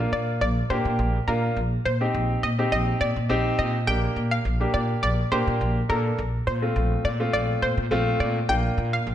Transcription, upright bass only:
0.12 0.43 A#2 medium
0.41 0.60 A#1 loud
0.70 0.80 A#2 medium
0.85 1.00 A#2 medium
0.99 1.18 A#1 loud
1.28 1.47 A#2 medium
1.57 1.75 A#1 loud
1.86 2.04 A#2 medium
2.15 2.33 A#1 loud
2.43 2.62 A#2 medium
2.72 2.91 A#1 loud
3.01 3.11 A#2 medium
3.16 3.25 A#2 medium
3.30 3.49 A#1 medium
3.59 3.89 A#2 loud
3.87 4.06 A#1 loud
4.16 4.35 A#2 medium
4.45 4.64 A#1 medium
4.74 4.93 A#2 loud
5.03 5.22 A#1 loud
5.32 5.42 A#2 loud
5.47 5.56 A#2 medium
5.61 5.80 A#1 loud
5.90 6.08 A#2 loud
6.19 6.37 A#1 medium
6.47 6.66 A#2 medium
6.76 6.95 A#1 medium
7.05 7.23 A#2 loud
7.33 7.52 A#1 loud
7.62 7.72 A#2 medium
7.77 7.86 A#2 medium
7.91 8.10 A#1 loud
8.20 8.39 A#2 loud
8.49 8.68 A#1 loud
8.78 8.96 A#2 medium
9.07 9.15 A#1 medium

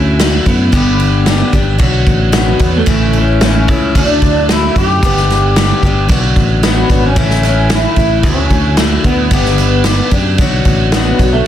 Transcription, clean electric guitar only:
0.00 0.17 C#4 medium
0.48 1.51 B3 loud
2.38 2.74 B3 medium
2.77 3.17 A3 medium
3.18 3.41 C#4 medium
3.44 3.99 C#4 loud
3.97 4.52 D4 loud
4.53 4.77 E4 medium
4.78 5.80 G4 loud
6.65 7.06 B3 medium
7.06 7.43 C#4 medium
7.47 7.73 C#4 medium
7.75 8.28 E4 loud
8.29 8.77 C#4 medium
9.05 10.09 B3 loud
10.94 11.31 B3 loud
11.33 11.47 A3 medium

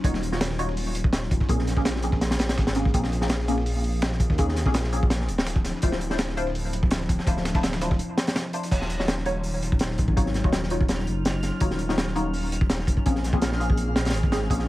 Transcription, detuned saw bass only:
0.04 1.39 D#1 loud
1.49 2.38 A#1 loud
2.40 2.58 A#1 medium
2.58 2.93 G#1 loud
2.94 4.29 A#1 loud
4.30 4.64 D#2 loud
4.65 5.30 A#1 loud
5.28 5.73 D1 medium
5.83 7.18 D1 loud
7.27 7.99 D1 loud
8.71 10.06 D#1 loud
10.08 10.43 G#1 loud
10.44 11.08 D#1 loud
11.07 11.51 F#1 medium
11.61 12.96 D#1 loud
13.06 13.95 A#1 loud
13.96 14.13 A#1 medium
14.14 14.49 G#1 loud
14.50 14.68 A#1 loud

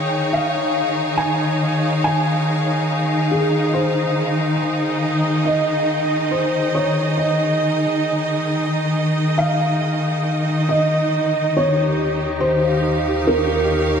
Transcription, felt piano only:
0.00 0.36 G5 medium
0.33 1.22 F5 medium
1.18 2.03 G#5 loud
2.04 3.36 G#5 medium
3.31 3.76 G#4 medium
3.74 5.51 C5 medium
5.45 6.34 D#5 loud
6.31 6.76 C5 medium
6.75 7.20 C#5 medium
7.17 9.76 D#5 medium
9.38 10.65 F5 medium
10.69 11.58 D#5 medium
11.57 12.45 C#5 medium
12.41 13.29 C5 medium
13.27 14.00 A#4 medium

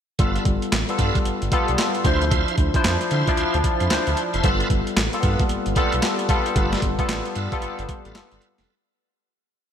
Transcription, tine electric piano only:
0.19 0.63 G3 medium
0.19 0.63 B3 medium
0.19 0.63 F4 medium
0.19 0.63 A4 medium
0.89 1.27 G3 medium
0.89 1.27 B3 medium
0.89 1.27 F4 medium
0.89 1.27 A4 medium
1.52 1.86 G3 loud
1.52 1.86 B3 medium
1.52 1.87 F4 medium
1.52 1.87 A4 loud
2.05 2.58 F3 loud
2.05 2.58 D4 medium
2.05 2.58 E4 medium
2.05 2.59 C5 loud
2.75 3.06 F3 medium
2.75 3.06 D4 medium
2.75 3.06 E4 medium
2.75 3.06 C5 loud
3.28 3.66 F3 loud
3.28 3.66 D4 medium
3.28 3.66 E4 medium
3.28 3.66 D5 loud
3.91 4.25 F3 medium
3.91 4.25 D4 medium
3.91 4.25 E4 medium
3.91 4.25 C5 medium
4.43 4.87 G3 medium
4.43 4.88 B3 medium
4.43 4.88 F4 medium
4.43 4.88 A4 medium
5.13 5.51 G3 medium
5.13 5.18 A#3 medium
5.13 5.52 F4 medium
5.13 5.52 A4 loud
5.20 5.55 B3 medium
5.76 6.11 G3 loud
5.76 6.11 B3 medium
5.76 6.11 F4 medium
5.76 6.11 A4 loud
6.29 6.73 G3 loud
6.29 6.73 B3 medium
6.29 6.74 F4 medium
6.29 6.74 A4 loud
6.99 7.30 G3 medium
6.99 7.30 B3 medium
6.99 7.31 F4 medium
6.99 7.31 A4 loud
7.52 7.90 G3 medium
7.52 7.90 B3 medium
7.52 7.90 F4 medium
7.52 7.90 A4 loud
8.15 8.50 G3 medium
8.15 8.50 B3 medium
8.15 8.50 F4 medium
8.15 8.50 A4 medium

